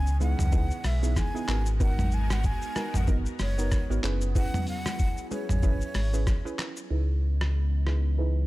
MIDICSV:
0, 0, Header, 1, 6, 480
1, 0, Start_track
1, 0, Tempo, 638298
1, 1355, Time_signature, 4, 2, 24, 8
1, 6369, End_track
2, 0, Start_track
2, 0, Title_t, "Flute"
2, 0, Program_c, 0, 73
2, 0, Note_on_c, 0, 80, 103
2, 131, Note_off_c, 0, 80, 0
2, 167, Note_on_c, 0, 78, 99
2, 647, Note_on_c, 0, 76, 89
2, 659, Note_off_c, 0, 78, 0
2, 889, Note_on_c, 0, 80, 98
2, 900, Note_off_c, 0, 76, 0
2, 1261, Note_off_c, 0, 80, 0
2, 1370, Note_on_c, 0, 78, 103
2, 1610, Note_on_c, 0, 80, 97
2, 1621, Note_off_c, 0, 78, 0
2, 1749, Note_on_c, 0, 78, 92
2, 1760, Note_off_c, 0, 80, 0
2, 1848, Note_on_c, 0, 80, 99
2, 1860, Note_off_c, 0, 78, 0
2, 2230, Note_on_c, 0, 78, 88
2, 2241, Note_off_c, 0, 80, 0
2, 2323, Note_off_c, 0, 78, 0
2, 2332, Note_on_c, 0, 75, 86
2, 2384, Note_off_c, 0, 75, 0
2, 2569, Note_on_c, 0, 73, 84
2, 3012, Note_off_c, 0, 73, 0
2, 3289, Note_on_c, 0, 78, 117
2, 3506, Note_off_c, 0, 78, 0
2, 3527, Note_on_c, 0, 78, 112
2, 3971, Note_off_c, 0, 78, 0
2, 4006, Note_on_c, 0, 73, 96
2, 4930, Note_off_c, 0, 73, 0
2, 6369, End_track
3, 0, Start_track
3, 0, Title_t, "Synth pluck"
3, 0, Program_c, 1, 84
3, 152, Note_on_c, 1, 59, 75
3, 153, Note_on_c, 1, 63, 70
3, 155, Note_on_c, 1, 64, 70
3, 157, Note_on_c, 1, 68, 88
3, 339, Note_off_c, 1, 59, 0
3, 340, Note_off_c, 1, 63, 0
3, 341, Note_off_c, 1, 64, 0
3, 342, Note_off_c, 1, 68, 0
3, 391, Note_on_c, 1, 59, 92
3, 393, Note_on_c, 1, 63, 84
3, 395, Note_on_c, 1, 64, 90
3, 396, Note_on_c, 1, 68, 104
3, 579, Note_off_c, 1, 59, 0
3, 579, Note_off_c, 1, 63, 0
3, 581, Note_off_c, 1, 64, 0
3, 581, Note_off_c, 1, 68, 0
3, 771, Note_on_c, 1, 59, 77
3, 773, Note_on_c, 1, 63, 70
3, 775, Note_on_c, 1, 64, 74
3, 776, Note_on_c, 1, 68, 84
3, 938, Note_off_c, 1, 59, 0
3, 939, Note_off_c, 1, 63, 0
3, 939, Note_off_c, 1, 64, 0
3, 940, Note_off_c, 1, 68, 0
3, 1012, Note_on_c, 1, 59, 78
3, 1013, Note_on_c, 1, 63, 72
3, 1014, Note_on_c, 1, 64, 74
3, 1016, Note_on_c, 1, 68, 86
3, 1104, Note_off_c, 1, 59, 0
3, 1105, Note_off_c, 1, 63, 0
3, 1113, Note_on_c, 1, 59, 91
3, 1114, Note_on_c, 1, 63, 87
3, 1116, Note_on_c, 1, 66, 84
3, 1118, Note_on_c, 1, 70, 102
3, 1179, Note_off_c, 1, 64, 0
3, 1180, Note_off_c, 1, 68, 0
3, 1338, Note_off_c, 1, 59, 0
3, 1339, Note_off_c, 1, 63, 0
3, 1340, Note_off_c, 1, 66, 0
3, 1340, Note_off_c, 1, 70, 0
3, 1353, Note_on_c, 1, 59, 93
3, 1355, Note_on_c, 1, 63, 83
3, 1357, Note_on_c, 1, 66, 86
3, 1358, Note_on_c, 1, 70, 102
3, 1802, Note_off_c, 1, 59, 0
3, 1803, Note_off_c, 1, 63, 0
3, 1804, Note_off_c, 1, 66, 0
3, 1804, Note_off_c, 1, 70, 0
3, 2072, Note_on_c, 1, 59, 76
3, 2073, Note_on_c, 1, 63, 75
3, 2075, Note_on_c, 1, 66, 72
3, 2076, Note_on_c, 1, 70, 88
3, 2259, Note_off_c, 1, 59, 0
3, 2260, Note_off_c, 1, 63, 0
3, 2261, Note_off_c, 1, 66, 0
3, 2261, Note_off_c, 1, 70, 0
3, 2313, Note_on_c, 1, 59, 90
3, 2314, Note_on_c, 1, 63, 86
3, 2316, Note_on_c, 1, 66, 83
3, 2317, Note_on_c, 1, 70, 105
3, 2500, Note_off_c, 1, 59, 0
3, 2500, Note_off_c, 1, 63, 0
3, 2501, Note_off_c, 1, 66, 0
3, 2502, Note_off_c, 1, 70, 0
3, 2693, Note_on_c, 1, 59, 77
3, 2694, Note_on_c, 1, 63, 70
3, 2695, Note_on_c, 1, 66, 69
3, 2697, Note_on_c, 1, 70, 85
3, 2859, Note_off_c, 1, 59, 0
3, 2859, Note_off_c, 1, 63, 0
3, 2860, Note_off_c, 1, 66, 0
3, 2861, Note_off_c, 1, 70, 0
3, 2933, Note_on_c, 1, 59, 76
3, 2934, Note_on_c, 1, 63, 71
3, 2936, Note_on_c, 1, 66, 74
3, 2937, Note_on_c, 1, 70, 92
3, 3033, Note_on_c, 1, 61, 97
3, 3035, Note_on_c, 1, 64, 88
3, 3036, Note_on_c, 1, 68, 89
3, 3037, Note_on_c, 1, 71, 104
3, 3098, Note_off_c, 1, 59, 0
3, 3099, Note_off_c, 1, 63, 0
3, 3100, Note_off_c, 1, 66, 0
3, 3101, Note_off_c, 1, 70, 0
3, 3258, Note_off_c, 1, 61, 0
3, 3259, Note_off_c, 1, 64, 0
3, 3259, Note_off_c, 1, 68, 0
3, 3260, Note_off_c, 1, 71, 0
3, 3272, Note_on_c, 1, 61, 94
3, 3273, Note_on_c, 1, 64, 84
3, 3275, Note_on_c, 1, 68, 89
3, 3276, Note_on_c, 1, 71, 100
3, 3721, Note_off_c, 1, 61, 0
3, 3722, Note_off_c, 1, 64, 0
3, 3723, Note_off_c, 1, 68, 0
3, 3723, Note_off_c, 1, 71, 0
3, 3992, Note_on_c, 1, 61, 77
3, 3994, Note_on_c, 1, 64, 75
3, 3995, Note_on_c, 1, 68, 72
3, 3997, Note_on_c, 1, 71, 83
3, 4179, Note_off_c, 1, 61, 0
3, 4180, Note_off_c, 1, 64, 0
3, 4181, Note_off_c, 1, 68, 0
3, 4182, Note_off_c, 1, 71, 0
3, 4232, Note_on_c, 1, 61, 93
3, 4234, Note_on_c, 1, 64, 84
3, 4235, Note_on_c, 1, 68, 83
3, 4237, Note_on_c, 1, 71, 101
3, 4419, Note_off_c, 1, 61, 0
3, 4420, Note_off_c, 1, 64, 0
3, 4421, Note_off_c, 1, 68, 0
3, 4422, Note_off_c, 1, 71, 0
3, 4611, Note_on_c, 1, 61, 74
3, 4613, Note_on_c, 1, 64, 70
3, 4614, Note_on_c, 1, 68, 69
3, 4616, Note_on_c, 1, 71, 83
3, 4778, Note_off_c, 1, 61, 0
3, 4779, Note_off_c, 1, 64, 0
3, 4779, Note_off_c, 1, 68, 0
3, 4780, Note_off_c, 1, 71, 0
3, 4851, Note_on_c, 1, 61, 79
3, 4853, Note_on_c, 1, 64, 74
3, 4854, Note_on_c, 1, 68, 72
3, 4856, Note_on_c, 1, 71, 87
3, 5018, Note_off_c, 1, 61, 0
3, 5019, Note_off_c, 1, 64, 0
3, 5019, Note_off_c, 1, 68, 0
3, 5020, Note_off_c, 1, 71, 0
3, 5192, Note_on_c, 1, 63, 90
3, 5194, Note_on_c, 1, 64, 82
3, 5195, Note_on_c, 1, 68, 84
3, 5197, Note_on_c, 1, 71, 99
3, 5641, Note_off_c, 1, 63, 0
3, 5642, Note_off_c, 1, 64, 0
3, 5643, Note_off_c, 1, 68, 0
3, 5644, Note_off_c, 1, 71, 0
3, 5913, Note_on_c, 1, 63, 79
3, 5914, Note_on_c, 1, 64, 71
3, 5916, Note_on_c, 1, 68, 69
3, 5917, Note_on_c, 1, 71, 84
3, 6100, Note_off_c, 1, 63, 0
3, 6100, Note_off_c, 1, 64, 0
3, 6101, Note_off_c, 1, 68, 0
3, 6102, Note_off_c, 1, 71, 0
3, 6152, Note_on_c, 1, 63, 93
3, 6154, Note_on_c, 1, 64, 84
3, 6155, Note_on_c, 1, 68, 83
3, 6157, Note_on_c, 1, 71, 98
3, 6339, Note_off_c, 1, 63, 0
3, 6340, Note_off_c, 1, 64, 0
3, 6341, Note_off_c, 1, 68, 0
3, 6342, Note_off_c, 1, 71, 0
3, 6369, End_track
4, 0, Start_track
4, 0, Title_t, "Analog synth pad"
4, 0, Program_c, 2, 89
4, 0, Note_on_c, 2, 49, 80
4, 0, Note_on_c, 2, 52, 90
4, 0, Note_on_c, 2, 56, 75
4, 0, Note_on_c, 2, 59, 74
4, 0, Note_on_c, 2, 61, 74
4, 1085, Note_off_c, 2, 49, 0
4, 1085, Note_off_c, 2, 52, 0
4, 1085, Note_off_c, 2, 59, 0
4, 1097, Note_off_c, 2, 61, 0
4, 1115, Note_on_c, 2, 63, 77
4, 1116, Note_on_c, 2, 59, 96
4, 1116, Note_on_c, 2, 66, 79
4, 1117, Note_on_c, 2, 70, 76
4, 3004, Note_off_c, 2, 56, 0
4, 3016, Note_off_c, 2, 63, 0
4, 3016, Note_off_c, 2, 66, 0
4, 3017, Note_off_c, 2, 70, 0
4, 3037, Note_on_c, 2, 54, 90
4, 3037, Note_on_c, 2, 64, 82
4, 3038, Note_on_c, 2, 61, 78
4, 3039, Note_on_c, 2, 68, 82
4, 5166, Note_off_c, 2, 59, 0
4, 5174, Note_off_c, 2, 54, 0
4, 5175, Note_off_c, 2, 61, 0
4, 5175, Note_off_c, 2, 64, 0
4, 5175, Note_off_c, 2, 68, 0
4, 5196, Note_on_c, 2, 56, 72
4, 5196, Note_on_c, 2, 59, 72
4, 5197, Note_on_c, 2, 49, 78
4, 5197, Note_on_c, 2, 52, 85
4, 5197, Note_on_c, 2, 75, 73
4, 6369, Note_off_c, 2, 49, 0
4, 6369, Note_off_c, 2, 52, 0
4, 6369, Note_off_c, 2, 56, 0
4, 6369, Note_off_c, 2, 59, 0
4, 6369, Note_off_c, 2, 75, 0
4, 6369, End_track
5, 0, Start_track
5, 0, Title_t, "Sub bass"
5, 0, Program_c, 3, 38
5, 0, Note_on_c, 3, 37, 110
5, 265, Note_off_c, 3, 37, 0
5, 294, Note_on_c, 3, 37, 98
5, 538, Note_off_c, 3, 37, 0
5, 634, Note_on_c, 3, 35, 99
5, 905, Note_off_c, 3, 35, 0
5, 1114, Note_on_c, 3, 32, 103
5, 1900, Note_off_c, 3, 32, 0
5, 2213, Note_on_c, 3, 32, 91
5, 2457, Note_off_c, 3, 32, 0
5, 2554, Note_on_c, 3, 30, 93
5, 2825, Note_off_c, 3, 30, 0
5, 2933, Note_on_c, 3, 32, 93
5, 3005, Note_off_c, 3, 32, 0
5, 3034, Note_on_c, 3, 30, 99
5, 3377, Note_off_c, 3, 30, 0
5, 4133, Note_on_c, 3, 32, 101
5, 4377, Note_off_c, 3, 32, 0
5, 4473, Note_on_c, 3, 32, 105
5, 4745, Note_off_c, 3, 32, 0
5, 5193, Note_on_c, 3, 37, 87
5, 6369, Note_off_c, 3, 37, 0
5, 6369, End_track
6, 0, Start_track
6, 0, Title_t, "Drums"
6, 49, Note_on_c, 9, 82, 58
6, 125, Note_off_c, 9, 82, 0
6, 155, Note_on_c, 9, 82, 59
6, 157, Note_on_c, 9, 63, 78
6, 230, Note_off_c, 9, 82, 0
6, 232, Note_off_c, 9, 63, 0
6, 292, Note_on_c, 9, 45, 89
6, 298, Note_on_c, 9, 82, 90
6, 367, Note_off_c, 9, 45, 0
6, 373, Note_off_c, 9, 82, 0
6, 390, Note_on_c, 9, 82, 73
6, 394, Note_on_c, 9, 64, 87
6, 395, Note_on_c, 9, 36, 118
6, 466, Note_off_c, 9, 82, 0
6, 469, Note_off_c, 9, 64, 0
6, 470, Note_off_c, 9, 36, 0
6, 530, Note_on_c, 9, 82, 56
6, 606, Note_off_c, 9, 82, 0
6, 631, Note_on_c, 9, 46, 59
6, 631, Note_on_c, 9, 82, 55
6, 632, Note_on_c, 9, 63, 70
6, 635, Note_on_c, 9, 37, 87
6, 706, Note_off_c, 9, 46, 0
6, 706, Note_off_c, 9, 82, 0
6, 708, Note_off_c, 9, 63, 0
6, 710, Note_off_c, 9, 37, 0
6, 775, Note_on_c, 9, 82, 84
6, 850, Note_off_c, 9, 82, 0
6, 874, Note_on_c, 9, 82, 78
6, 875, Note_on_c, 9, 36, 91
6, 876, Note_on_c, 9, 37, 86
6, 876, Note_on_c, 9, 64, 84
6, 949, Note_off_c, 9, 82, 0
6, 950, Note_off_c, 9, 36, 0
6, 951, Note_off_c, 9, 37, 0
6, 951, Note_off_c, 9, 64, 0
6, 1023, Note_on_c, 9, 82, 51
6, 1098, Note_off_c, 9, 82, 0
6, 1115, Note_on_c, 9, 37, 81
6, 1115, Note_on_c, 9, 39, 86
6, 1120, Note_on_c, 9, 82, 50
6, 1190, Note_off_c, 9, 37, 0
6, 1190, Note_off_c, 9, 39, 0
6, 1196, Note_off_c, 9, 82, 0
6, 1247, Note_on_c, 9, 82, 88
6, 1322, Note_off_c, 9, 82, 0
6, 1355, Note_on_c, 9, 36, 123
6, 1355, Note_on_c, 9, 82, 82
6, 1430, Note_off_c, 9, 36, 0
6, 1430, Note_off_c, 9, 82, 0
6, 1492, Note_on_c, 9, 63, 69
6, 1496, Note_on_c, 9, 45, 96
6, 1496, Note_on_c, 9, 82, 52
6, 1568, Note_off_c, 9, 63, 0
6, 1571, Note_off_c, 9, 45, 0
6, 1572, Note_off_c, 9, 82, 0
6, 1589, Note_on_c, 9, 82, 48
6, 1664, Note_off_c, 9, 82, 0
6, 1733, Note_on_c, 9, 37, 119
6, 1733, Note_on_c, 9, 82, 88
6, 1737, Note_on_c, 9, 63, 77
6, 1808, Note_off_c, 9, 37, 0
6, 1808, Note_off_c, 9, 82, 0
6, 1812, Note_off_c, 9, 63, 0
6, 1830, Note_on_c, 9, 82, 72
6, 1837, Note_on_c, 9, 36, 94
6, 1905, Note_off_c, 9, 82, 0
6, 1912, Note_off_c, 9, 36, 0
6, 1969, Note_on_c, 9, 82, 58
6, 2044, Note_off_c, 9, 82, 0
6, 2073, Note_on_c, 9, 82, 59
6, 2074, Note_on_c, 9, 37, 96
6, 2077, Note_on_c, 9, 63, 76
6, 2148, Note_off_c, 9, 82, 0
6, 2150, Note_off_c, 9, 37, 0
6, 2152, Note_off_c, 9, 63, 0
6, 2211, Note_on_c, 9, 45, 90
6, 2217, Note_on_c, 9, 82, 88
6, 2286, Note_off_c, 9, 45, 0
6, 2292, Note_off_c, 9, 82, 0
6, 2309, Note_on_c, 9, 82, 69
6, 2314, Note_on_c, 9, 64, 86
6, 2315, Note_on_c, 9, 36, 123
6, 2385, Note_off_c, 9, 82, 0
6, 2389, Note_off_c, 9, 64, 0
6, 2390, Note_off_c, 9, 36, 0
6, 2449, Note_on_c, 9, 82, 55
6, 2524, Note_off_c, 9, 82, 0
6, 2549, Note_on_c, 9, 46, 56
6, 2549, Note_on_c, 9, 82, 60
6, 2552, Note_on_c, 9, 63, 71
6, 2553, Note_on_c, 9, 37, 87
6, 2625, Note_off_c, 9, 46, 0
6, 2625, Note_off_c, 9, 82, 0
6, 2627, Note_off_c, 9, 63, 0
6, 2628, Note_off_c, 9, 37, 0
6, 2693, Note_on_c, 9, 82, 85
6, 2768, Note_off_c, 9, 82, 0
6, 2792, Note_on_c, 9, 82, 79
6, 2794, Note_on_c, 9, 37, 86
6, 2795, Note_on_c, 9, 36, 89
6, 2797, Note_on_c, 9, 64, 82
6, 2867, Note_off_c, 9, 82, 0
6, 2869, Note_off_c, 9, 37, 0
6, 2870, Note_off_c, 9, 36, 0
6, 2872, Note_off_c, 9, 64, 0
6, 2942, Note_on_c, 9, 82, 51
6, 3017, Note_off_c, 9, 82, 0
6, 3034, Note_on_c, 9, 39, 85
6, 3040, Note_on_c, 9, 82, 49
6, 3109, Note_off_c, 9, 39, 0
6, 3115, Note_off_c, 9, 82, 0
6, 3167, Note_on_c, 9, 82, 88
6, 3242, Note_off_c, 9, 82, 0
6, 3274, Note_on_c, 9, 82, 83
6, 3275, Note_on_c, 9, 36, 117
6, 3349, Note_off_c, 9, 82, 0
6, 3350, Note_off_c, 9, 36, 0
6, 3413, Note_on_c, 9, 63, 71
6, 3416, Note_on_c, 9, 45, 94
6, 3417, Note_on_c, 9, 82, 54
6, 3488, Note_off_c, 9, 63, 0
6, 3491, Note_off_c, 9, 45, 0
6, 3492, Note_off_c, 9, 82, 0
6, 3510, Note_on_c, 9, 46, 47
6, 3510, Note_on_c, 9, 82, 48
6, 3585, Note_off_c, 9, 46, 0
6, 3585, Note_off_c, 9, 82, 0
6, 3653, Note_on_c, 9, 37, 119
6, 3654, Note_on_c, 9, 82, 87
6, 3656, Note_on_c, 9, 63, 77
6, 3729, Note_off_c, 9, 37, 0
6, 3729, Note_off_c, 9, 82, 0
6, 3731, Note_off_c, 9, 63, 0
6, 3750, Note_on_c, 9, 82, 70
6, 3757, Note_on_c, 9, 36, 96
6, 3825, Note_off_c, 9, 82, 0
6, 3832, Note_off_c, 9, 36, 0
6, 3889, Note_on_c, 9, 82, 56
6, 3964, Note_off_c, 9, 82, 0
6, 3993, Note_on_c, 9, 82, 59
6, 3996, Note_on_c, 9, 63, 77
6, 4069, Note_off_c, 9, 82, 0
6, 4071, Note_off_c, 9, 63, 0
6, 4131, Note_on_c, 9, 45, 91
6, 4137, Note_on_c, 9, 82, 90
6, 4206, Note_off_c, 9, 45, 0
6, 4212, Note_off_c, 9, 82, 0
6, 4229, Note_on_c, 9, 82, 68
6, 4232, Note_on_c, 9, 64, 84
6, 4235, Note_on_c, 9, 36, 116
6, 4305, Note_off_c, 9, 82, 0
6, 4307, Note_off_c, 9, 64, 0
6, 4310, Note_off_c, 9, 36, 0
6, 4370, Note_on_c, 9, 82, 57
6, 4445, Note_off_c, 9, 82, 0
6, 4470, Note_on_c, 9, 46, 60
6, 4470, Note_on_c, 9, 82, 59
6, 4471, Note_on_c, 9, 63, 72
6, 4474, Note_on_c, 9, 37, 89
6, 4545, Note_off_c, 9, 46, 0
6, 4545, Note_off_c, 9, 82, 0
6, 4547, Note_off_c, 9, 63, 0
6, 4549, Note_off_c, 9, 37, 0
6, 4613, Note_on_c, 9, 82, 82
6, 4688, Note_off_c, 9, 82, 0
6, 4712, Note_on_c, 9, 82, 78
6, 4714, Note_on_c, 9, 37, 86
6, 4715, Note_on_c, 9, 36, 87
6, 4715, Note_on_c, 9, 64, 80
6, 4788, Note_off_c, 9, 82, 0
6, 4790, Note_off_c, 9, 36, 0
6, 4790, Note_off_c, 9, 37, 0
6, 4790, Note_off_c, 9, 64, 0
6, 4862, Note_on_c, 9, 82, 50
6, 4937, Note_off_c, 9, 82, 0
6, 4954, Note_on_c, 9, 37, 81
6, 4954, Note_on_c, 9, 39, 81
6, 4960, Note_on_c, 9, 82, 46
6, 5029, Note_off_c, 9, 37, 0
6, 5029, Note_off_c, 9, 39, 0
6, 5035, Note_off_c, 9, 82, 0
6, 5087, Note_on_c, 9, 82, 88
6, 5162, Note_off_c, 9, 82, 0
6, 5574, Note_on_c, 9, 37, 106
6, 5649, Note_off_c, 9, 37, 0
6, 5915, Note_on_c, 9, 37, 86
6, 5990, Note_off_c, 9, 37, 0
6, 6369, End_track
0, 0, End_of_file